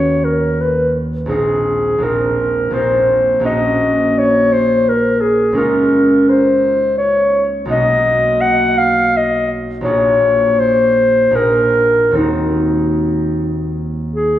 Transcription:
0.00 1.29 D#2 soft
0.00 1.30 B3 soft
0.00 1.31 C#4 soft
0.00 1.32 F#4 soft
0.00 3.03 G#4 soft
0.00 0.26 C#5 medium
0.25 0.63 A#4 soft
0.61 0.95 B4 soft
1.26 1.97 A#1 soft
1.26 1.98 A#3 soft
1.26 1.99 C4 soft
1.26 2.00 D#4 soft
1.26 2.05 G#4 soft
1.31 2.02 F4 soft
1.98 2.69 A#1 soft
1.98 2.70 A#3 soft
1.98 2.72 C4 soft
1.98 2.72 D#4 soft
2.03 2.74 F4 soft
2.03 2.75 A#4 medium
2.71 3.38 A#1 soft
2.71 3.40 A#3 soft
2.71 3.49 C4 soft
2.71 3.42 D#4 soft
2.71 3.45 C5 medium
2.75 3.49 F4 soft
3.40 5.58 A#1 soft
3.40 7.31 A#3 soft
3.40 5.54 C#4 soft
3.40 5.56 D#4 soft
3.45 5.61 F#4 soft
3.45 4.20 D#5 medium
4.19 4.54 C#5 medium
4.53 4.90 C5 medium
4.89 5.23 A#4 medium
5.21 5.59 G#4 medium
5.52 7.70 C#2 soft
5.52 7.71 G#3 soft
5.52 7.71 C#4 soft
5.57 7.66 D#4 soft
5.57 7.73 F4 soft
5.57 6.31 A#4 medium
6.29 6.97 C5 medium
6.98 7.44 C#5 medium
7.65 9.87 B1 soft
7.65 9.80 A#3 soft
7.65 9.82 D#4 soft
7.65 9.89 F#4 soft
7.71 8.43 D#5 medium
8.41 8.79 F#5 medium
8.78 9.19 F5 medium
9.17 9.52 D#5 medium
9.81 11.30 A#1 soft
9.81 11.31 A#3 soft
9.81 11.32 D#4 soft
9.81 10.61 C#5 medium
9.85 11.33 F4 soft
9.85 11.35 G#4 soft
10.60 11.37 C5 medium
11.31 12.17 A#1 soft
11.31 12.11 A#3 soft
11.31 12.15 D#4 soft
11.31 12.19 F4 soft
11.35 12.20 G#4 soft
11.35 12.18 A#4 medium
12.11 14.39 D#2 soft
12.11 14.39 A#3 soft
12.11 14.39 C4 soft
12.16 14.39 D#4 soft
12.16 13.76 D#4 soft
12.16 14.39 F#4 soft
14.15 14.39 G#4 soft

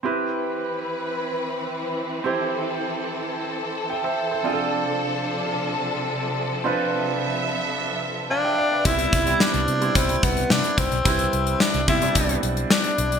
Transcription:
0.03 4.41 E3 medium
0.03 2.20 C4 medium
0.03 4.41 C4 medium
0.03 2.20 E4 medium
0.03 2.21 G4 medium
0.03 2.22 B4 medium
0.03 2.21 B4 medium
2.24 4.40 C4 medium
2.24 4.41 E4 medium
2.24 4.41 G4 medium
2.24 8.81 A4 medium
2.24 3.87 C5 medium
3.90 4.03 E5 soft
3.90 4.03 G5 medium
4.04 4.30 C5 medium
4.04 4.30 E5 medium
4.31 4.51 A4 soft
4.31 4.57 C5 medium
4.44 8.82 C3 medium
4.44 8.81 F3 medium
4.44 6.61 C4 medium
4.44 6.61 D4 medium
4.44 6.63 D4 medium
4.44 6.61 F4 medium
4.44 4.52 G#4 medium
4.53 6.65 A4 medium
6.64 8.81 C4 medium
6.64 8.81 D4 medium
6.64 8.81 F4 medium
6.64 8.27 B4 medium
6.64 8.83 E5 medium
8.31 8.87 D4 medium
8.31 8.44 F5 soft
8.31 8.43 A5 medium
8.44 8.57 E5 medium
8.44 8.57 G5 medium
8.58 8.70 D5 medium
8.58 8.71 F5 medium
8.72 8.98 B4 soft
8.72 8.98 D5 medium
8.85 9.06 C2 medium
8.85 9.13 G3 medium
8.85 9.14 B3 medium
8.85 9.14 C4 medium
8.85 9.42 E4 loud
8.85 9.14 E4 medium
8.85 kick medium
8.85 closed hi-hat medium
8.99 closed hi-hat medium
9.13 9.33 C2 medium
9.13 kick medium
9.13 closed hi-hat medium
9.26 9.64 G3 medium
9.26 9.64 B3 medium
9.26 9.64 C4 medium
9.26 9.65 E4 medium
9.26 closed hi-hat soft
9.40 9.97 D4 medium
9.40 snare medium
9.54 9.64 C2 medium
9.54 closed hi-hat soft
9.68 9.88 C3 medium
9.68 closed hi-hat medium
9.81 10.57 G3 medium
9.81 10.57 B3 medium
9.81 10.57 C4 medium
9.81 10.57 E4 medium
9.81 closed hi-hat soft
9.95 10.16 C2 medium
9.95 10.25 C4 medium
9.95 kick medium
9.95 closed hi-hat medium
10.09 closed hi-hat soft
10.23 10.44 C2 medium
10.23 10.53 B3 medium
10.23 kick medium
10.23 closed hi-hat medium
10.37 closed hi-hat soft
10.50 10.61 C3 medium
10.50 10.80 D4 medium
10.50 snare medium
10.64 closed hi-hat soft
10.78 10.88 C2 medium
10.78 11.63 C4 medium
10.78 kick medium
10.78 closed hi-hat medium
10.92 11.02 B1 medium
10.92 closed hi-hat soft
11.05 11.26 C2 medium
11.05 11.62 G3 medium
11.05 11.62 C4 medium
11.05 11.62 E4 medium
11.05 11.62 B4 medium
11.05 kick loud
11.05 closed hi-hat medium
11.19 closed hi-hat medium
11.33 11.54 C2 medium
11.33 closed hi-hat medium
11.47 closed hi-hat soft
11.60 11.88 D4 medium
11.60 snare loud
11.74 11.85 C2 medium
11.74 closed hi-hat soft
11.88 12.09 C3 medium
11.88 11.97 G3 medium
11.88 11.97 B3 medium
11.88 11.98 C4 medium
11.88 11.98 E4 medium
11.88 12.40 E4 medium
11.88 kick medium
11.88 closed hi-hat medium
12.01 12.77 G3 medium
12.01 12.77 B3 medium
12.01 12.77 C4 medium
12.01 12.78 D4 medium
12.01 closed hi-hat soft
12.15 12.36 C2 medium
12.15 kick medium
12.15 closed hi-hat medium
12.29 closed hi-hat soft
12.43 12.64 B1 medium
12.43 closed hi-hat medium
12.57 closed hi-hat soft
12.70 13.19 D4 medium
12.70 snare loud
12.84 closed hi-hat soft
12.98 13.19 B1 medium
12.98 closed hi-hat medium
13.12 closed hi-hat soft

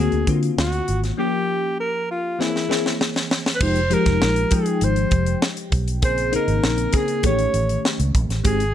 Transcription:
0.00 0.21 D3 medium
0.00 0.21 A#3 medium
0.00 0.22 C4 medium
0.00 0.22 F#4 medium
0.00 0.29 G#4 medium
0.12 0.23 D2 loud
0.12 closed hi-hat soft
0.27 0.49 D3 medium
0.27 0.83 D3 medium
0.27 0.83 A#3 medium
0.27 0.84 C4 medium
0.27 0.84 F4 medium
0.27 kick medium
0.27 closed hi-hat medium
0.43 closed hi-hat medium
0.58 0.80 D2 medium
0.58 1.01 F#4 medium
0.58 snare loud
0.72 closed hi-hat soft
0.88 1.10 G#1 medium
0.88 closed hi-hat medium
1.04 snare soft
1.04 closed hi-hat soft
1.17 1.92 F3 medium
1.17 1.92 A#3 medium
1.17 1.92 C#4 medium
1.17 1.93 G4 medium
1.17 1.75 G4 loud
1.80 2.08 A#4 medium
2.11 2.43 F4 medium
2.39 2.63 E3 medium
2.39 2.64 A#3 medium
2.39 2.64 C4 medium
2.39 3.01 E4 medium
2.39 2.64 G#4 medium
2.39 snare medium
2.56 snare soft
2.69 3.25 E3 medium
2.69 3.25 A#3 medium
2.69 3.25 C4 medium
2.69 3.25 G#4 medium
2.69 snare medium
2.86 snare medium
3.01 snare medium
3.16 snare medium
3.31 snare loud
3.46 snare medium
3.55 3.64 B4 medium
3.60 3.94 F1 medium
3.60 3.79 F3 medium
3.60 3.80 G#3 medium
3.60 3.80 D#4 medium
3.60 3.80 G4 medium
3.60 3.95 C5 loud
3.60 kick loud
3.60 crash loud
3.76 closed hi-hat medium
3.90 4.27 F3 medium
3.90 4.28 G#3 medium
3.90 4.28 D#4 medium
3.90 4.28 G4 medium
3.90 4.56 A#4 loud
3.90 closed hi-hat medium
4.06 4.17 F1 medium
4.06 kick loud
4.06 snare soft
4.06 closed hi-hat soft
4.22 4.44 A#1 medium
4.22 snare loud
4.36 closed hi-hat soft
4.51 5.25 F3 medium
4.51 5.26 G#3 medium
4.51 5.26 D#4 medium
4.51 4.85 G#4 medium
4.51 5.26 G5 medium
4.51 kick loud
4.51 closed hi-hat medium
4.66 closed hi-hat soft
4.81 5.04 G#1 medium
4.81 5.44 C5 medium
4.81 closed hi-hat medium
4.96 closed hi-hat soft
5.11 5.34 F1 medium
5.11 kick loud
5.11 closed hi-hat medium
5.26 closed hi-hat medium
5.42 snare loud
5.57 closed hi-hat medium
5.72 6.02 B1 loud
5.72 kick medium
5.72 closed hi-hat medium
5.88 closed hi-hat soft
6.02 6.36 A#1 loud
6.02 6.21 C#3 medium
6.02 6.21 A#3 medium
6.02 6.21 C4 medium
6.02 6.22 G#4 medium
6.02 6.32 C5 loud
6.02 kick loud
6.02 closed hi-hat loud
6.18 closed hi-hat medium
6.32 6.70 C#3 medium
6.32 6.70 A#3 medium
6.32 6.70 C4 medium
6.32 6.70 D#4 medium
6.32 6.97 A#4 medium
6.32 closed hi-hat medium
6.48 6.59 G#1 medium
6.48 closed hi-hat soft
6.63 6.85 A#1 medium
6.63 snare loud
6.78 closed hi-hat medium
6.93 7.24 C#3 medium
6.93 7.24 A#3 medium
6.93 7.24 C4 medium
6.93 7.24 G#4 medium
6.93 7.25 G#4 medium
6.93 kick loud
6.93 closed hi-hat medium
7.08 closed hi-hat soft
7.23 7.46 A1 loud
7.23 8.21 D#3 medium
7.23 8.21 A3 medium
7.23 8.21 C#4 medium
7.23 8.21 G4 medium
7.23 7.82 C#5 medium
7.23 kick loud
7.23 closed hi-hat medium
7.39 closed hi-hat medium
7.54 7.76 A1 medium
7.54 closed hi-hat medium
7.69 closed hi-hat medium
7.85 snare loud
8.00 8.11 C#2 medium
8.00 closed hi-hat medium
8.15 8.26 A#1 loud
8.15 kick medium
8.15 closed hi-hat medium
8.29 8.40 A1 medium
8.29 snare soft
8.29 closed hi-hat medium
8.44 8.74 G#1 loud
8.44 8.63 D#3 medium
8.44 8.63 G#3 medium
8.44 8.63 C4 medium
8.44 8.63 G4 medium
8.44 8.74 G#4 loud
8.44 kick loud
8.44 closed hi-hat loud
8.60 closed hi-hat soft

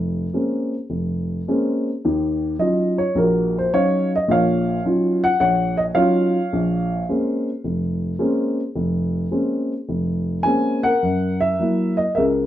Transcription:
0.00 0.25 F1 medium
0.34 0.73 G#3 soft
0.34 0.73 A#3 soft
0.34 0.74 C4 soft
0.34 0.74 C#4 soft
0.90 1.39 F1 medium
1.48 1.88 G#3 soft
1.48 1.88 A#3 soft
1.48 1.89 C4 soft
1.48 1.89 C#4 medium
2.05 2.54 D#2 medium
2.05 2.54 D#3 medium
2.59 3.01 F#3 soft
2.59 3.01 C#4 soft
2.59 3.01 D#4 soft
2.59 3.02 F4 soft
2.59 3.00 D#5 medium
2.98 3.17 C#5 medium
3.15 3.65 A#1 medium
3.15 3.57 A#4 medium
3.20 4.27 F#4 soft
3.58 3.74 C5 medium
3.73 4.14 F#3 soft
3.73 4.14 C#4 soft
3.73 4.14 D#4 soft
3.73 4.10 C#5 medium
3.73 4.15 F5 medium
4.16 4.30 D#5 medium
4.28 4.78 A#1 medium
4.28 4.78 A#2 medium
4.28 4.83 F5 medium
4.32 5.38 C#5 medium
4.85 5.26 F#3 soft
4.85 5.25 C#4 soft
4.85 5.26 D#4 soft
4.85 5.26 F4 medium
5.24 5.39 F#5 medium
5.40 5.89 A#1 medium
5.40 5.93 C#5 medium
5.40 5.76 F#5 medium
5.77 5.82 D#5 medium
5.95 6.36 F#3 medium
5.95 6.36 C#4 medium
5.95 6.36 D#4 soft
5.95 6.36 F4 medium
5.95 7.02 C#5 medium
5.95 7.02 F5 medium
6.53 7.01 A#1 medium
7.09 7.48 G#3 soft
7.09 7.48 A#3 soft
7.09 7.48 C4 soft
7.09 7.48 C#4 soft
7.64 8.12 F1 medium
8.19 8.59 G#3 soft
8.19 8.59 A#3 soft
8.19 8.60 C4 soft
8.19 8.60 C#4 medium
8.76 9.24 F1 medium
9.31 9.72 G#3 soft
9.31 9.72 A#3 soft
9.31 9.72 C4 soft
9.31 9.72 C#4 soft
9.89 10.38 F1 medium
10.43 10.87 G#3 soft
10.43 10.87 A#3 soft
10.43 10.87 C4 soft
10.43 10.87 C#4 medium
10.43 10.85 G#5 medium
10.83 11.95 A#4 medium
10.83 11.37 F#5 medium
11.02 11.52 F#2 medium
11.40 11.94 E5 medium
11.59 12.00 F#3 soft
11.59 12.01 A#3 soft
11.59 12.01 E4 soft
11.97 12.14 D#5 medium
12.15 12.46 C#2 medium
12.15 12.46 C#3 medium
12.15 12.46 A#4 medium
12.15 12.24 E5 medium

